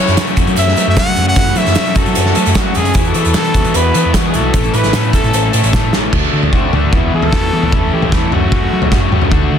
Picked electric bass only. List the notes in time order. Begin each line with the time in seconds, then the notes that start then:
0.08 F#2
0.18 F#3
0.37 F#2
0.48 F#3
0.57 F#2
0.78 F#3
0.87 F#2
0.97 F#3
1.17 F#2
1.37 F#2
1.56 F#3
1.67 F#2
1.77 F#3
1.96 F#2
2.07 F#3
2.17 F#2
2.37 F#3
2.46 F#2
2.55 F#3
2.76 F#2
2.95 E2
3.15 E3
3.25 E2
3.35 E3
3.55 E2
3.65 E3
3.75 E2
3.95 E3
4.05 E2
4.14 E3
4.34 B1
4.54 A1
4.74 A2
4.84 A1
4.95 A2
5.14 A1
5.25 A2
5.34 A1
5.54 A2
5.64 A1
5.73 A2
5.93 A1
6.13 D2
6.33 D3
6.53 D2
6.73 D2
6.93 E2
7.13 E3
7.32 E2
7.53 E3
7.72 E2
7.93 E3
8.12 E2
8.33 F#2
8.52 F#2
8.73 F#3
8.92 F#2
9.12 E2
9.32 D2
9.52 D3